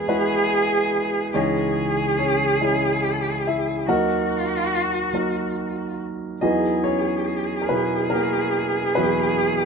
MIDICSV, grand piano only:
0, 0, Header, 1, 2, 480
1, 0, Start_track
1, 0, Tempo, 847458
1, 753, Time_signature, 6, 3, 24, 8
1, 5466, End_track
2, 0, Start_track
2, 0, Title_t, "Grand piano"
2, 0, Program_c, 0, 0
2, 0, Control_c, 0, 64, 127
2, 0, Note_on_c, 0, 40, 54
2, 0, Note_on_c, 0, 52, 58
2, 0, Note_on_c, 0, 56, 69
2, 0, Note_on_c, 0, 59, 55
2, 0, Note_on_c, 0, 64, 64
2, 0, Note_on_c, 0, 66, 69
2, 0, Note_on_c, 0, 68, 51
2, 0, Note_on_c, 0, 70, 54
2, 0, Note_on_c, 0, 71, 82
2, 45, Note_off_c, 0, 56, 0
2, 45, Note_on_c, 0, 56, 72
2, 47, Note_off_c, 0, 66, 0
2, 47, Note_on_c, 0, 66, 73
2, 48, Note_off_c, 0, 64, 0
2, 48, Note_on_c, 0, 64, 69
2, 50, Note_off_c, 0, 71, 0
2, 50, Note_on_c, 0, 71, 80
2, 708, Note_off_c, 0, 56, 0
2, 709, Note_off_c, 0, 64, 0
2, 709, Note_off_c, 0, 66, 0
2, 710, Note_off_c, 0, 71, 0
2, 732, Note_off_c, 0, 40, 0
2, 732, Note_off_c, 0, 52, 0
2, 759, Note_on_c, 0, 61, 68
2, 760, Control_c, 0, 64, 0
2, 760, Note_on_c, 0, 56, 72
2, 761, Note_on_c, 0, 37, 62
2, 761, Note_on_c, 0, 49, 60
2, 762, Note_on_c, 0, 52, 68
2, 763, Note_off_c, 0, 59, 0
2, 763, Note_off_c, 0, 68, 0
2, 764, Note_off_c, 0, 70, 0
2, 764, Note_on_c, 0, 73, 80
2, 769, Note_on_c, 0, 75, 86
2, 771, Note_on_c, 0, 63, 62
2, 774, Note_on_c, 0, 68, 61
2, 870, Control_c, 0, 64, 127
2, 1217, Note_off_c, 0, 75, 0
2, 1218, Note_off_c, 0, 63, 0
2, 1220, Note_off_c, 0, 68, 0
2, 1230, Note_off_c, 0, 73, 0
2, 1232, Note_off_c, 0, 61, 0
2, 1239, Note_on_c, 0, 73, 82
2, 1241, Note_on_c, 0, 61, 64
2, 1423, Note_off_c, 0, 56, 0
2, 1424, Note_off_c, 0, 52, 0
2, 1459, Note_off_c, 0, 61, 0
2, 1473, Note_off_c, 0, 73, 0
2, 1478, Note_on_c, 0, 56, 63
2, 1480, Note_on_c, 0, 61, 59
2, 1481, Note_on_c, 0, 64, 59
2, 1482, Note_on_c, 0, 73, 78
2, 1961, Note_off_c, 0, 64, 0
2, 1966, Note_on_c, 0, 76, 78
2, 1969, Note_off_c, 0, 73, 0
2, 1969, Note_on_c, 0, 64, 62
2, 2141, Note_off_c, 0, 56, 0
2, 2142, Note_off_c, 0, 61, 0
2, 2169, Note_off_c, 0, 49, 0
2, 2170, Note_off_c, 0, 37, 0
2, 2181, Note_off_c, 0, 76, 0
2, 2182, Note_off_c, 0, 64, 0
2, 2197, Control_c, 0, 64, 0
2, 2197, Note_on_c, 0, 39, 60
2, 2197, Note_on_c, 0, 51, 58
2, 2198, Note_on_c, 0, 54, 74
2, 2199, Note_on_c, 0, 58, 66
2, 2199, Note_on_c, 0, 63, 67
2, 2201, Note_on_c, 0, 70, 80
2, 2202, Note_on_c, 0, 78, 86
2, 2206, Note_on_c, 0, 66, 64
2, 2209, Note_on_c, 0, 75, 63
2, 2293, Control_c, 0, 64, 127
2, 2862, Note_off_c, 0, 54, 0
2, 2862, Note_off_c, 0, 58, 0
2, 2862, Note_off_c, 0, 63, 0
2, 2863, Note_off_c, 0, 70, 0
2, 2894, Note_off_c, 0, 66, 0
2, 2896, Note_off_c, 0, 75, 0
2, 2907, Note_on_c, 0, 54, 60
2, 2908, Note_on_c, 0, 58, 55
2, 2911, Note_on_c, 0, 63, 54
2, 2915, Note_on_c, 0, 70, 68
2, 2920, Note_on_c, 0, 66, 55
2, 2936, Note_off_c, 0, 78, 0
2, 3579, Note_off_c, 0, 54, 0
2, 3580, Note_off_c, 0, 58, 0
2, 3581, Note_off_c, 0, 63, 0
2, 3583, Note_off_c, 0, 70, 0
2, 3612, Note_off_c, 0, 39, 0
2, 3612, Note_off_c, 0, 51, 0
2, 3614, Note_off_c, 0, 66, 0
2, 3632, Note_on_c, 0, 75, 87
2, 3636, Note_on_c, 0, 54, 71
2, 3639, Control_c, 0, 64, 0
2, 3639, Note_on_c, 0, 59, 67
2, 3639, Note_on_c, 0, 63, 61
2, 3640, Note_on_c, 0, 66, 62
2, 3641, Note_on_c, 0, 68, 78
2, 3642, Note_on_c, 0, 40, 55
2, 3642, Note_on_c, 0, 52, 65
2, 3752, Control_c, 0, 64, 127
2, 3859, Note_off_c, 0, 63, 0
2, 3860, Note_off_c, 0, 66, 0
2, 3873, Note_on_c, 0, 73, 90
2, 3875, Note_off_c, 0, 68, 0
2, 3880, Note_off_c, 0, 75, 0
2, 3882, Note_on_c, 0, 61, 56
2, 3883, Note_on_c, 0, 68, 56
2, 4297, Note_off_c, 0, 61, 0
2, 4297, Note_off_c, 0, 68, 0
2, 4305, Note_off_c, 0, 54, 0
2, 4307, Note_off_c, 0, 59, 0
2, 4308, Note_off_c, 0, 52, 0
2, 4314, Note_on_c, 0, 70, 63
2, 4328, Note_off_c, 0, 73, 0
2, 4354, Note_off_c, 0, 70, 0
2, 4355, Note_on_c, 0, 71, 82
2, 4362, Note_on_c, 0, 54, 61
2, 4363, Note_on_c, 0, 47, 56
2, 4363, Note_on_c, 0, 64, 59
2, 4365, Note_on_c, 0, 68, 66
2, 4370, Note_on_c, 0, 59, 61
2, 4587, Note_off_c, 0, 59, 0
2, 4587, Note_on_c, 0, 70, 95
2, 4596, Note_on_c, 0, 66, 60
2, 4599, Note_on_c, 0, 58, 56
2, 4603, Note_off_c, 0, 71, 0
2, 5030, Note_off_c, 0, 47, 0
2, 5030, Note_off_c, 0, 54, 0
2, 5030, Note_off_c, 0, 64, 0
2, 5032, Note_off_c, 0, 68, 0
2, 5055, Note_off_c, 0, 66, 0
2, 5057, Note_off_c, 0, 58, 0
2, 5060, Note_off_c, 0, 40, 0
2, 5070, Note_on_c, 0, 71, 92
2, 5081, Note_on_c, 0, 59, 63
2, 5081, Note_on_c, 0, 68, 59
2, 5082, Note_on_c, 0, 54, 73
2, 5083, Note_on_c, 0, 66, 63
2, 5084, Note_on_c, 0, 40, 58
2, 5084, Note_on_c, 0, 64, 69
2, 5088, Note_off_c, 0, 70, 0
2, 5466, Note_off_c, 0, 40, 0
2, 5466, Note_off_c, 0, 54, 0
2, 5466, Note_off_c, 0, 59, 0
2, 5466, Note_off_c, 0, 64, 0
2, 5466, Note_off_c, 0, 66, 0
2, 5466, Note_off_c, 0, 68, 0
2, 5466, Note_off_c, 0, 71, 0
2, 5466, End_track
0, 0, End_of_file